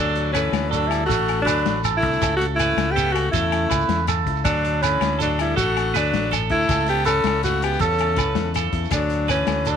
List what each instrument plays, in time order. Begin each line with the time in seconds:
Already playing: fingered electric bass D2, alto saxophone D4, clean electric guitar A4
0.00 steel-string acoustic guitar D3 A4, tenor saxophone F#3
0.15 steel-string acoustic guitar F#4, closed hi-hat
0.32 tenor saxophone E3, alto saxophone C#4, steel-string acoustic guitar A4, clean electric guitar B4, closed hi-hat, low agogo, shekere
0.52 fingered electric bass D2, steel-string acoustic guitar A4, snare, closed hi-hat, low agogo, shekere
0.69 tenor saxophone F#3, alto saxophone D4, clean electric guitar A4, closed hi-hat, shekere
0.74 steel-string acoustic guitar A2 A4
0.88 tenor saxophone G3, alto saxophone E4, closed hi-hat, low agogo
0.93 steel-string acoustic guitar D4, shekere
1.06 fingered electric bass A1, tenor saxophone A3, alto saxophone F#4, clean electric guitar A4, kick
1.10 steel-string acoustic guitar D3 D4, closed hi-hat, shekere
1.28 steel-string acoustic guitar D4, closed hi-hat, low agogo
1.42 fingered electric bass D2, tenor saxophone F#3, alto saxophone D4
1.46 steel-string acoustic guitar D4 A4, clean electric guitar B4, closed hi-hat, low agogo, shekere
1.57 shekere
1.65 fingered electric bass A1, steel-string acoustic guitar F#3, snare, closed hi-hat
1.84 steel-string acoustic guitar E3, clean electric guitar A4, closed hi-hat, low agogo, shekere
1.97 tenor saxophone A3, alto saxophone E4
2.02 fingered electric bass C2, steel-string acoustic guitar D3, kick, closed hi-hat
2.13 shekere
2.22 fingered electric bass C#2, steel-string acoustic guitar C#3 C#4, clean electric guitar A4, kick, closed hi-hat, low agogo, shekere
2.36 tenor saxophone A3, alto saxophone F#4
2.41 steel-string acoustic guitar E4, closed hi-hat
2.55 tenor saxophone A3, steel-string acoustic guitar C#4, alto saxophone E4
2.59 clean electric guitar B4, closed hi-hat, low agogo, shekere
2.77 fingered electric bass C#2, steel-string acoustic guitar C#4, snare, closed hi-hat, low agogo, shekere
2.91 tenor saxophone B3, alto saxophone G4
2.96 steel-string acoustic guitar C#3 E4, clean electric guitar A4, closed hi-hat, shekere
3.12 tenor saxophone A3, alto saxophone F#4, muted steel-string acoustic guitar stroke, low agogo
3.16 closed hi-hat, shekere
3.31 fingered electric bass E2, steel-string acoustic guitar C#3 C#4, tenor saxophone A3, alto saxophone E4, clean electric guitar A4, kick, closed hi-hat, shekere
3.52 steel-string acoustic guitar C#4, closed hi-hat, low agogo
3.70 fingered electric bass C#2, steel-string acoustic guitar C#4, clean electric guitar B4, kick, closed hi-hat, low agogo, shekere
3.88 fingered electric bass E2, steel-string acoustic guitar C#4, snare, closed hi-hat
4.07 steel-string acoustic guitar C#3 A4, clean electric guitar A4, closed hi-hat, low agogo, shekere
4.26 fingered electric bass C#2, steel-string acoustic guitar E4, kick, closed hi-hat
4.36 shekere
4.45 fingered electric bass D2, steel-string acoustic guitar D3 D4 F#4 A4, tenor saxophone F#3, alto saxophone D4, clean electric guitar A4, kick, closed hi-hat, low agogo, shekere
4.64 closed hi-hat
4.82 tenor saxophone E3, alto saxophone C#4, steel-string acoustic guitar A4, clean electric guitar B4, closed hi-hat, low agogo, shekere
5.01 fingered electric bass D2, steel-string acoustic guitar A4, snare, closed hi-hat, low agogo, shekere
5.19 steel-string acoustic guitar A2 A4, tenor saxophone F#3, alto saxophone D4, clean electric guitar A4, closed hi-hat, shekere
5.39 tenor saxophone G3, steel-string acoustic guitar D4, alto saxophone E4, closed hi-hat, low agogo, shekere
5.56 fingered electric bass A1, steel-string acoustic guitar D3 D4, tenor saxophone A3, alto saxophone F#4, clean electric guitar A4, kick, closed hi-hat, shekere
5.77 steel-string acoustic guitar D4, closed hi-hat, low agogo
5.94 fingered electric bass D2, tenor saxophone F#3, alto saxophone D4, steel-string acoustic guitar A4, clean electric guitar B4, muted steel-string acoustic guitar stroke, closed hi-hat, low agogo, shekere
6.05 shekere
6.13 fingered electric bass A1, steel-string acoustic guitar A4, snare, closed hi-hat
6.31 steel-string acoustic guitar A2 A4, clean electric guitar A4, closed hi-hat, low agogo, shekere
6.50 fingered electric bass D2, tenor saxophone A3, steel-string acoustic guitar D4, alto saxophone E4, kick, closed hi-hat
6.62 shekere
6.69 fingered electric bass C#2, steel-string acoustic guitar C#3 C#4, clean electric guitar A4, kick, closed hi-hat, low agogo, shekere
6.80 shekere
6.87 tenor saxophone B3, steel-string acoustic guitar E4, alto saxophone G4, closed hi-hat
7.04 steel-string acoustic guitar C#4 E4, tenor saxophone C#4, alto saxophone A4, clean electric guitar B4, closed hi-hat, low agogo, shekere
7.24 fingered electric bass C#2, steel-string acoustic guitar E4, snare, closed hi-hat, low agogo
7.43 steel-string acoustic guitar C#3 E4, tenor saxophone A3, alto saxophone F#4, closed hi-hat, shekere
7.62 tenor saxophone B3, steel-string acoustic guitar E4, alto saxophone G4, closed hi-hat, low agogo, shekere
7.73 shekere
7.79 fingered electric bass E2, steel-string acoustic guitar C#3 E4, tenor saxophone C#4, clean electric guitar A4, alto saxophone A4, kick, closed hi-hat, shekere
7.92 shekere
7.98 steel-string acoustic guitar E4, closed hi-hat, low agogo
8.16 fingered electric bass C#2, steel-string acoustic guitar C#4 E4, clean electric guitar B4, kick, closed hi-hat, low agogo, shekere
8.35 fingered electric bass E2, steel-string acoustic guitar E4, snare, closed hi-hat
8.54 steel-string acoustic guitar C#3 A4, clean electric guitar A4, closed hi-hat, low agogo, shekere
8.72 fingered electric bass E2, steel-string acoustic guitar E4, kick, closed hi-hat
8.84 shekere
8.91 fingered electric bass D2, steel-string acoustic guitar D3 D4 A4, alto saxophone D4, muted clean electric guitar stroke, muted steel-string acoustic guitar stroke, kick, closed hi-hat, low agogo, shekere
8.95 tenor saxophone F#3
9.10 steel-string acoustic guitar F#4, closed hi-hat
9.28 tenor saxophone E3, alto saxophone C#4, steel-string acoustic guitar A4, clean electric guitar B4, closed hi-hat, low agogo, shekere
9.47 fingered electric bass D2, steel-string acoustic guitar A4, snare, closed hi-hat, low agogo, shekere
9.65 steel-string acoustic guitar A2 A4, clean electric guitar A4, closed hi-hat, shekere
9.69 tenor saxophone F#3, alto saxophone D4